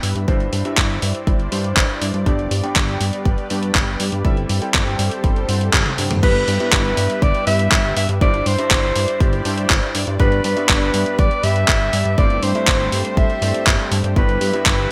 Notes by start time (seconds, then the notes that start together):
Already playing: G2 G3 B3 E4 G4 B4 E5
0.03 G2, open hi-hat
0.16 G2, closed hi-hat
0.28 G1 G2 G3 D4 E4 C5 D5, kick, closed hi-hat
0.40 closed hi-hat
0.53 G2, open hi-hat
0.65 G2 G3 D4 E4 E5, closed hi-hat
0.77 G1, kick, clap
0.90 closed hi-hat
1.02 G2, open hi-hat
1.15 closed hi-hat
1.27 G1, kick, closed hi-hat
1.40 closed hi-hat
1.52 G2 G3 D4 E4 C5, open hi-hat
1.64 closed hi-hat
1.77 G1, kick, clap, closed hi-hat
1.89 closed hi-hat
2.02 G2, open hi-hat
2.14 G2, closed hi-hat
2.26 G1 G2 G3 B3 D4 G4 B4 D5, kick, closed hi-hat
2.39 closed hi-hat
2.51 G2, open hi-hat
2.63 G2 B3 D4 G4 G5, closed hi-hat
2.76 G1, kick, clap, closed hi-hat
2.88 closed hi-hat
3.01 G2, open hi-hat
3.13 closed hi-hat
3.25 G1, kick, closed hi-hat
3.38 closed hi-hat
3.50 G2 B3 D4 G4 D5, open hi-hat
3.63 closed hi-hat
3.75 G1, kick, clap, closed hi-hat
3.87 closed hi-hat
4.00 G2, open hi-hat
4.12 G2, closed hi-hat
4.25 G1 G3 C4 E4 G4 A4 C5 E5, kick, closed hi-hat
4.37 closed hi-hat
4.49 G2, open hi-hat
4.62 G3 C4 E4 A4 G5, closed hi-hat
4.74 G1, kick, clap, closed hi-hat
4.87 closed hi-hat
4.99 G2, open hi-hat
5.11 closed hi-hat
5.24 G1, kick, closed hi-hat
5.36 closed hi-hat
5.49 G2 G3 C4 E4 A4 F#5, open hi-hat
5.61 closed hi-hat
5.73 G1, kick, clap, closed hi-hat, high tom
5.86 closed hi-hat, high tom
5.98 G2, open hi-hat
6.11 G2, closed hi-hat, mid tom
6.23 G1 G2 G3 B3 E4 G4 B4 E5, kick, closed hi-hat, crash
6.35 closed hi-hat
6.48 G2, open hi-hat
6.60 G2 G3 B3 E4 E5, closed hi-hat
6.73 G1 B4, kick, clap
6.85 closed hi-hat
6.97 G2, open hi-hat
7.10 closed hi-hat
7.22 G1 D5, kick, closed hi-hat
7.35 closed hi-hat
7.47 G2 G3 B3 E4 B4 E5, open hi-hat
7.59 closed hi-hat
7.72 G1, kick, clap, closed hi-hat
7.84 closed hi-hat
7.97 G2 E5, open hi-hat
8.09 G2, closed hi-hat
8.21 G1 G2 G3 D4 E4 C5 D5, kick, closed hi-hat
8.34 closed hi-hat
8.46 G2 C5, open hi-hat
8.59 G2 G3 D4 E4 E5, closed hi-hat
8.71 G1, kick, clap
8.83 closed hi-hat
8.96 G2, open hi-hat
9.08 closed hi-hat
9.20 G1 G4, kick, closed hi-hat
9.33 closed hi-hat
9.45 G2 G3 D4 E4 C5, open hi-hat
9.58 closed hi-hat
9.70 G1, kick, clap, closed hi-hat
9.82 closed hi-hat
9.95 G2, open hi-hat
10.07 G2, closed hi-hat
10.19 G1 G2 G3 B3 D4 G4 B4, kick, closed hi-hat
10.32 closed hi-hat
10.44 G2 B4, open hi-hat
10.57 G2 G3 B3 D4 E5, closed hi-hat
10.69 G1 B4, kick, clap, closed hi-hat
10.82 closed hi-hat
10.94 G2, open hi-hat
11.06 closed hi-hat
11.19 G1 D5, kick, closed hi-hat
11.31 closed hi-hat
11.43 G2 G3 B3 D4 B4 E5, open hi-hat
11.56 closed hi-hat
11.68 G1, kick, clap, closed hi-hat
11.81 closed hi-hat
11.93 G2, open hi-hat
12.06 G2
12.18 G1 G2 A3 C4 E4 A4 C5 D5, kick, closed hi-hat
12.30 closed hi-hat
12.43 G2 C5, open hi-hat
12.55 G2 A3 C4 E4 E5, closed hi-hat
12.67 G1, kick, clap
12.80 closed hi-hat
12.92 G2, open hi-hat
13.05 closed hi-hat
13.17 G1 E5, kick, closed hi-hat
13.30 closed hi-hat
13.42 G2 A3 C4 E4 D5, open hi-hat
13.54 closed hi-hat
13.67 G1, kick, clap, closed hi-hat
13.79 closed hi-hat
13.92 G2, open hi-hat
14.04 G2, closed hi-hat
14.16 G1 G2 G3 B3 E4 B4 E5, kick, closed hi-hat
14.29 closed hi-hat
14.41 G2, open hi-hat
14.54 G2 G3 B3 E4 E5, closed hi-hat
14.66 G1 B4, kick, clap
14.78 closed hi-hat